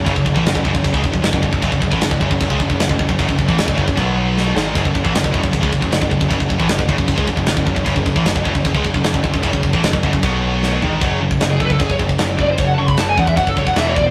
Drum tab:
CC |x---x---x---x---|x---x---x---x---|x---x---x-------|x---x---x---x---|
SD |----o-------o---|----o-------o---|----o-------o-o-|----o-------o---|
FT |----------------|----------------|----------------|----------------|
BD |oooo-ooooooo-ooo|oooo-ooooooo-ooo|oooo-oooo-------|oooo-ooooooo-ooo|

CC |x---x---x---x---|x---x---x---x---|x---x---x-------|x---x---x---x---|
SD |----o-------o---|----o-------o---|----o-------o---|----o-------o---|
FT |----------------|----------------|--------------o-|----------------|
BD |oooo-ooooooo-ooo|oooo-ooooooo-ooo|oooo-oooo-------|o--o--oooooo--o-|

CC |x---x---x---x---|
SD |----o-------o---|
FT |----------------|
BD |o--o--oooooo--o-|